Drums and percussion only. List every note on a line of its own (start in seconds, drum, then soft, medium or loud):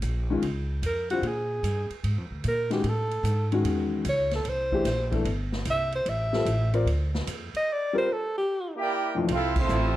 0.02 hi-hat pedal medium
0.02 ride medium
0.42 ride medium
0.83 hi-hat pedal medium
0.83 ride medium
1.10 ride soft
1.23 ride medium
1.64 hi-hat pedal medium
1.64 ride medium
1.90 ride soft
2.04 ride medium
2.44 hi-hat pedal medium
2.44 ride medium
2.71 snare soft
2.71 ride medium
2.84 ride medium
3.11 ride soft
3.25 hi-hat pedal medium
3.25 ride medium
3.52 ride soft
3.65 ride medium
4.05 hi-hat pedal medium
4.05 ride medium
4.31 snare soft
4.31 ride soft
4.45 ride medium
4.72 kick medium
4.85 snare soft
4.85 hi-hat pedal medium
4.85 ride medium
5.12 kick medium
5.12 ride soft
5.25 ride medium
5.52 snare medium
5.65 hi-hat pedal medium
5.65 ride medium
5.92 ride soft
6.06 ride medium
6.33 snare soft
6.46 hi-hat pedal medium
6.46 ride medium
6.74 ride soft
6.87 ride medium
7.15 snare medium
7.27 hi-hat pedal medium
7.27 ride medium
7.55 ride soft
9.28 ride medium
9.56 kick loud
9.56 crash medium
9.69 hi-hat pedal medium